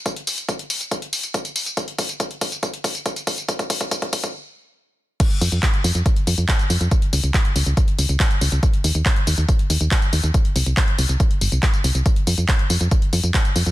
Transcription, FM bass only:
X:1
M:4/4
L:1/16
Q:1/4=140
K:Cphr
V:1 name="FM bass" clef=bass
z16 | z16 | z16 | z2 F,, F,, z2 F,, F,, z2 F,, F,, z2 F,, F,, |
z2 D,, D,, z2 D,, D,, z2 D,, D,, z2 D,, D,, | z2 E,, E,, z2 E,, E,, z2 E,, E,, z2 E,, E,, | z2 C,, C,, z2 C,, C,, z2 G,,, C,, z2 C,, C,, | z2 F,, F,, z2 F,, F,, z2 F,, F,, z2 F,, F,, |]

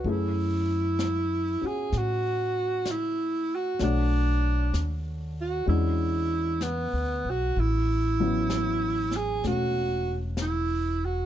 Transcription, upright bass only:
X:1
M:4/4
L:1/8
Q:"Swing" 1/4=64
K:F#m
V:1 name="Upright bass" clef=bass
F,,3 z A,,4 | B,,,2 ^D,,2 E,,2- (3E,, =D,, B,,, | A,,,4 E,,,4 |]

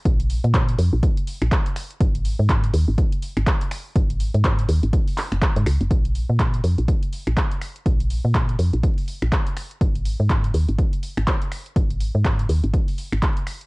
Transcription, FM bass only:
X:1
M:4/4
L:1/16
Q:"Swing 16ths" 1/4=123
K:Abdor
V:1 name="FM bass" clef=bass
B,,,3 B,,3 F,, B,,, z3 B,,, z4 | A,,,3 A,,3 E,, A,,, z3 A,,, z4 | A,,,3 A,,3 E,, A,,, z3 G,,, z A,, D,, G,,, | B,,,3 B,,3 F,, B,,, z3 B,,, z4 |
B,,,3 B,,3 F,, B,,, z3 B,,, z4 | A,,,3 A,,3 E,, A,,, z3 A,,, z4 | A,,,3 A,,3 E,, A,,, z3 A,,, z4 |]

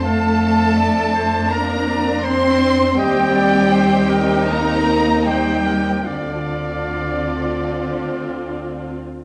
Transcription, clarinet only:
X:1
M:4/4
L:1/8
Q:1/4=78
K:Dphr
V:1 name="Clarinet"
f2 d c B d c2 | e d c B2 z c B | f6- f z |]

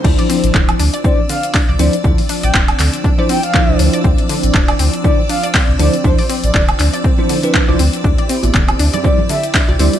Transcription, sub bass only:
X:1
M:4/4
L:1/16
Q:"Swing 16ths" 1/4=120
K:Dm
V:1 name="Sub bass" clef=bass
D,, z2 A,,, D,,, z D,, z6 C,, D,, z | D,, z2 A,,, D,,, z D,, z6 C,, D,, z | D,, z2 A,,, D,,, z D,, z6 C,, D,, z | D,, z2 A,,, D,,, z D,, z6 C,, D,, z |
D,, z2 A,,, D,,, z D,, z6 C,, D,, z |]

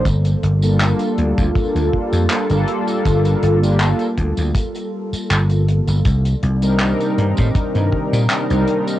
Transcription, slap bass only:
X:1
M:4/4
L:1/16
Q:1/4=80
K:Gm
V:1 name="Slap bass" clef=bass
G,,, z G,,,3 z D,, D,, z D,, z F,, z G,,, z2 | G,,, z G,,,3 z D,, D,, z4 G,,,3 G,,, | C,, z C,,3 z G,, A,, z G,, z B,, z C,, z2 |]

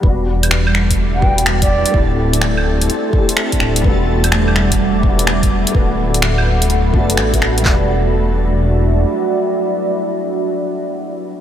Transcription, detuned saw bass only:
X:1
M:4/4
L:1/8
Q:"Swing 16ths" 1/4=126
K:Em
V:1 name="Detuned saw bass" clef=bass
E,,,4 E,,,3 z | D,,,4 z3 D,,, | E,,,4 E,,,3 z | D,,,4- D,,, F,,, A,,,2 |
E,,,6 z2 | z8 |]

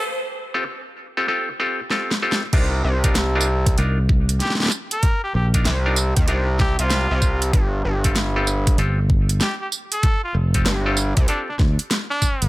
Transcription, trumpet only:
X:1
M:4/4
L:1/16
Q:"Swing 16ths" 1/4=96
K:Cdor
V:1 name="Trumpet"
z16 | z12 G G z B- | B G G z6 z G F4 z | z12 G G z A- |
A F z6 D D z3 D3 |]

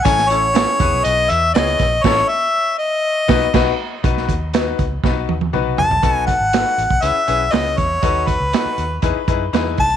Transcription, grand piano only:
X:1
M:4/4
L:1/8
Q:1/4=120
K:Bmix
V:1 name="Grand piano"
[CEAc] [CEAc] [CEAc] [B,EGB]2 z [B,EGc] z | [CEAc] z4 [B,DFB] [B,DFB] z | [B,DFB] z [B,DFB] z [B,DFB] z [B,DFB] z | [B,DFA] z [B,DFA] z [CEGB] [CEGB] [CEGB] z |
[DFAB] z [DFAB] z [DEGB] [DEGB] [DEGB] z |]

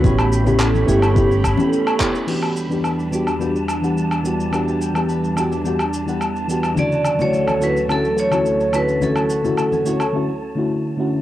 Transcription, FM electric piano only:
X:1
M:4/4
L:1/16
Q:1/4=107
K:Edor
V:1 name="FM electric piano"
[B,CEG]3 [B,CEG]3 [B,CEG] z [B,CEG] z2 [B,CEG]3 [B,CEG]2 | [E,B,DFG]3 [E,B,DG]3 [E,B,DFG] z [E,B,DFG] z2 [E,B,DGf]3 [E,B,DFG]2 | [E,B,DFG]3 [E,B,DG]3 [E,B,DFG] z [E,B,DFG] z2 [E,B,DGf]3 [E,B,DFG]2 | [C,D,A,EF]3 [D,A,CEF]3 [D,A,CEF] z [D,A,CEF] z2 [D,A,CEF]3 [D,A,CEF]2 |
[D,A,CEF]3 [D,A,CEF]3 [D,A,CEF] z [D,A,CEF] z2 [D,A,CEF]3 [D,A,CEF]2 |]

